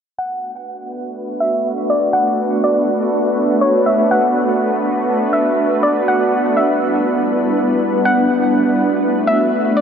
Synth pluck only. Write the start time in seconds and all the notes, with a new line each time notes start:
0.18 F#5
1.40 E5
1.90 D5
2.13 F#5
2.64 D5
3.61 C#5
3.86 E5
4.11 F#5
5.33 E5
5.83 D5
6.08 F#5
6.57 E5
8.05 F#5
9.27 E5
9.77 D5